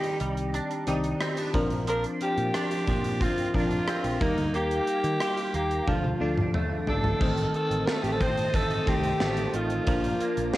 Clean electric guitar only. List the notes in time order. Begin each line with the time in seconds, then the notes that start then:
Already playing: G3 D#4
0.21 G3
0.54 D4
0.88 D#4
1.21 C4
1.38 D4
1.54 F3
1.87 F3 D4
2.21 F3
2.54 D4
2.88 F3
3.21 C4
3.54 D4
3.88 C4
4.21 A#3
4.54 A#3 G4
4.88 A#3
5.21 G4
5.54 A#3
5.87 F3
6.21 D4
6.54 A3
6.87 D4
7.21 D#3
7.54 D#3
7.87 A3
8.21 C4
8.54 A3
8.87 C4
9.21 A3
9.54 D#3
9.87 F3
10.21 A#3
10.54 D4